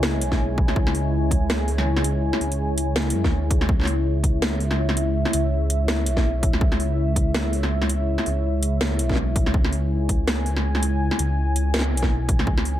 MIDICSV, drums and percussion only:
0, 0, Header, 1, 2, 480
1, 0, Start_track
1, 0, Key_signature, 4, "minor"
1, 0, Tempo, 365854
1, 1000, Time_signature, 4, 2, 24, 8
1, 16791, End_track
2, 0, Start_track
2, 0, Title_t, "Drums"
2, 38, Note_on_c, 9, 38, 121
2, 169, Note_off_c, 9, 38, 0
2, 282, Note_on_c, 9, 42, 78
2, 413, Note_off_c, 9, 42, 0
2, 414, Note_on_c, 9, 36, 60
2, 417, Note_on_c, 9, 38, 35
2, 546, Note_off_c, 9, 36, 0
2, 548, Note_off_c, 9, 38, 0
2, 758, Note_on_c, 9, 36, 104
2, 890, Note_off_c, 9, 36, 0
2, 896, Note_on_c, 9, 40, 54
2, 999, Note_on_c, 9, 36, 112
2, 1027, Note_off_c, 9, 40, 0
2, 1130, Note_off_c, 9, 36, 0
2, 1138, Note_on_c, 9, 40, 55
2, 1242, Note_on_c, 9, 46, 39
2, 1269, Note_off_c, 9, 40, 0
2, 1374, Note_off_c, 9, 46, 0
2, 1720, Note_on_c, 9, 36, 60
2, 1725, Note_on_c, 9, 42, 65
2, 1851, Note_off_c, 9, 36, 0
2, 1856, Note_off_c, 9, 42, 0
2, 1965, Note_on_c, 9, 38, 117
2, 1965, Note_on_c, 9, 40, 58
2, 2096, Note_off_c, 9, 38, 0
2, 2096, Note_off_c, 9, 40, 0
2, 2203, Note_on_c, 9, 46, 40
2, 2334, Note_off_c, 9, 46, 0
2, 2339, Note_on_c, 9, 40, 55
2, 2470, Note_off_c, 9, 40, 0
2, 2579, Note_on_c, 9, 40, 55
2, 2682, Note_on_c, 9, 42, 64
2, 2710, Note_off_c, 9, 40, 0
2, 2813, Note_off_c, 9, 42, 0
2, 3058, Note_on_c, 9, 40, 56
2, 3163, Note_on_c, 9, 46, 39
2, 3189, Note_off_c, 9, 40, 0
2, 3295, Note_off_c, 9, 46, 0
2, 3302, Note_on_c, 9, 42, 39
2, 3433, Note_off_c, 9, 42, 0
2, 3642, Note_on_c, 9, 42, 69
2, 3773, Note_off_c, 9, 42, 0
2, 3881, Note_on_c, 9, 38, 120
2, 4012, Note_off_c, 9, 38, 0
2, 4071, Note_on_c, 9, 42, 83
2, 4202, Note_off_c, 9, 42, 0
2, 4255, Note_on_c, 9, 36, 60
2, 4258, Note_on_c, 9, 38, 36
2, 4386, Note_off_c, 9, 36, 0
2, 4389, Note_off_c, 9, 38, 0
2, 4599, Note_on_c, 9, 36, 105
2, 4601, Note_on_c, 9, 42, 67
2, 4730, Note_off_c, 9, 36, 0
2, 4733, Note_off_c, 9, 42, 0
2, 4738, Note_on_c, 9, 40, 55
2, 4839, Note_on_c, 9, 36, 121
2, 4869, Note_off_c, 9, 40, 0
2, 4971, Note_off_c, 9, 36, 0
2, 4980, Note_on_c, 9, 40, 24
2, 5004, Note_off_c, 9, 40, 0
2, 5004, Note_on_c, 9, 40, 32
2, 5031, Note_off_c, 9, 40, 0
2, 5031, Note_on_c, 9, 40, 39
2, 5054, Note_off_c, 9, 40, 0
2, 5054, Note_on_c, 9, 40, 45
2, 5082, Note_on_c, 9, 46, 37
2, 5185, Note_off_c, 9, 40, 0
2, 5214, Note_off_c, 9, 46, 0
2, 5558, Note_on_c, 9, 36, 61
2, 5561, Note_on_c, 9, 42, 70
2, 5689, Note_off_c, 9, 36, 0
2, 5692, Note_off_c, 9, 42, 0
2, 5802, Note_on_c, 9, 38, 124
2, 5802, Note_on_c, 9, 40, 59
2, 5933, Note_off_c, 9, 38, 0
2, 5933, Note_off_c, 9, 40, 0
2, 6041, Note_on_c, 9, 46, 38
2, 6172, Note_off_c, 9, 46, 0
2, 6175, Note_on_c, 9, 40, 57
2, 6306, Note_off_c, 9, 40, 0
2, 6414, Note_on_c, 9, 40, 55
2, 6518, Note_on_c, 9, 42, 68
2, 6545, Note_off_c, 9, 40, 0
2, 6650, Note_off_c, 9, 42, 0
2, 6894, Note_on_c, 9, 40, 53
2, 6998, Note_on_c, 9, 42, 85
2, 7025, Note_off_c, 9, 40, 0
2, 7129, Note_off_c, 9, 42, 0
2, 7478, Note_on_c, 9, 42, 72
2, 7609, Note_off_c, 9, 42, 0
2, 7718, Note_on_c, 9, 38, 127
2, 7849, Note_off_c, 9, 38, 0
2, 7956, Note_on_c, 9, 42, 86
2, 8088, Note_off_c, 9, 42, 0
2, 8091, Note_on_c, 9, 36, 63
2, 8094, Note_on_c, 9, 38, 39
2, 8222, Note_off_c, 9, 36, 0
2, 8225, Note_off_c, 9, 38, 0
2, 8435, Note_on_c, 9, 36, 112
2, 8437, Note_on_c, 9, 42, 71
2, 8566, Note_off_c, 9, 36, 0
2, 8568, Note_off_c, 9, 42, 0
2, 8573, Note_on_c, 9, 40, 54
2, 8674, Note_on_c, 9, 36, 127
2, 8704, Note_off_c, 9, 40, 0
2, 8805, Note_off_c, 9, 36, 0
2, 8813, Note_on_c, 9, 40, 51
2, 8919, Note_on_c, 9, 46, 35
2, 8945, Note_off_c, 9, 40, 0
2, 9051, Note_off_c, 9, 46, 0
2, 9396, Note_on_c, 9, 36, 63
2, 9399, Note_on_c, 9, 42, 69
2, 9527, Note_off_c, 9, 36, 0
2, 9530, Note_off_c, 9, 42, 0
2, 9637, Note_on_c, 9, 38, 127
2, 9637, Note_on_c, 9, 40, 56
2, 9768, Note_off_c, 9, 38, 0
2, 9768, Note_off_c, 9, 40, 0
2, 9879, Note_on_c, 9, 46, 36
2, 10010, Note_off_c, 9, 46, 0
2, 10014, Note_on_c, 9, 40, 53
2, 10145, Note_off_c, 9, 40, 0
2, 10255, Note_on_c, 9, 40, 51
2, 10358, Note_on_c, 9, 42, 68
2, 10386, Note_off_c, 9, 40, 0
2, 10490, Note_off_c, 9, 42, 0
2, 10734, Note_on_c, 9, 40, 51
2, 10840, Note_on_c, 9, 46, 36
2, 10865, Note_off_c, 9, 40, 0
2, 10971, Note_off_c, 9, 46, 0
2, 11317, Note_on_c, 9, 42, 65
2, 11448, Note_off_c, 9, 42, 0
2, 11557, Note_on_c, 9, 38, 127
2, 11688, Note_off_c, 9, 38, 0
2, 11796, Note_on_c, 9, 42, 79
2, 11927, Note_off_c, 9, 42, 0
2, 11932, Note_on_c, 9, 36, 65
2, 11934, Note_on_c, 9, 38, 18
2, 11961, Note_off_c, 9, 38, 0
2, 11961, Note_on_c, 9, 38, 22
2, 11987, Note_off_c, 9, 38, 0
2, 11987, Note_on_c, 9, 38, 27
2, 12012, Note_off_c, 9, 38, 0
2, 12012, Note_on_c, 9, 38, 32
2, 12064, Note_off_c, 9, 36, 0
2, 12143, Note_off_c, 9, 38, 0
2, 12277, Note_on_c, 9, 36, 113
2, 12278, Note_on_c, 9, 42, 68
2, 12408, Note_off_c, 9, 36, 0
2, 12409, Note_off_c, 9, 42, 0
2, 12416, Note_on_c, 9, 40, 52
2, 12517, Note_on_c, 9, 36, 119
2, 12548, Note_off_c, 9, 40, 0
2, 12648, Note_off_c, 9, 36, 0
2, 12654, Note_on_c, 9, 40, 51
2, 12760, Note_on_c, 9, 46, 38
2, 12786, Note_off_c, 9, 40, 0
2, 12891, Note_off_c, 9, 46, 0
2, 13239, Note_on_c, 9, 36, 62
2, 13241, Note_on_c, 9, 42, 65
2, 13370, Note_off_c, 9, 36, 0
2, 13372, Note_off_c, 9, 42, 0
2, 13481, Note_on_c, 9, 38, 124
2, 13481, Note_on_c, 9, 40, 53
2, 13612, Note_off_c, 9, 38, 0
2, 13612, Note_off_c, 9, 40, 0
2, 13724, Note_on_c, 9, 46, 38
2, 13855, Note_off_c, 9, 46, 0
2, 13861, Note_on_c, 9, 40, 50
2, 13992, Note_off_c, 9, 40, 0
2, 14101, Note_on_c, 9, 40, 51
2, 14204, Note_on_c, 9, 42, 65
2, 14233, Note_off_c, 9, 40, 0
2, 14335, Note_off_c, 9, 42, 0
2, 14580, Note_on_c, 9, 40, 53
2, 14683, Note_on_c, 9, 42, 78
2, 14711, Note_off_c, 9, 40, 0
2, 14814, Note_off_c, 9, 42, 0
2, 15165, Note_on_c, 9, 42, 64
2, 15296, Note_off_c, 9, 42, 0
2, 15402, Note_on_c, 9, 38, 118
2, 15436, Note_off_c, 9, 38, 0
2, 15436, Note_on_c, 9, 38, 95
2, 15470, Note_off_c, 9, 38, 0
2, 15470, Note_on_c, 9, 38, 79
2, 15502, Note_off_c, 9, 38, 0
2, 15502, Note_on_c, 9, 38, 63
2, 15633, Note_off_c, 9, 38, 0
2, 15710, Note_on_c, 9, 42, 77
2, 15776, Note_on_c, 9, 36, 62
2, 15780, Note_on_c, 9, 38, 36
2, 15841, Note_off_c, 9, 42, 0
2, 15907, Note_off_c, 9, 36, 0
2, 15911, Note_off_c, 9, 38, 0
2, 16120, Note_on_c, 9, 36, 107
2, 16123, Note_on_c, 9, 42, 65
2, 16251, Note_off_c, 9, 36, 0
2, 16254, Note_off_c, 9, 42, 0
2, 16258, Note_on_c, 9, 40, 54
2, 16360, Note_on_c, 9, 36, 114
2, 16389, Note_off_c, 9, 40, 0
2, 16491, Note_off_c, 9, 36, 0
2, 16499, Note_on_c, 9, 40, 54
2, 16602, Note_on_c, 9, 46, 40
2, 16630, Note_off_c, 9, 40, 0
2, 16733, Note_off_c, 9, 46, 0
2, 16791, End_track
0, 0, End_of_file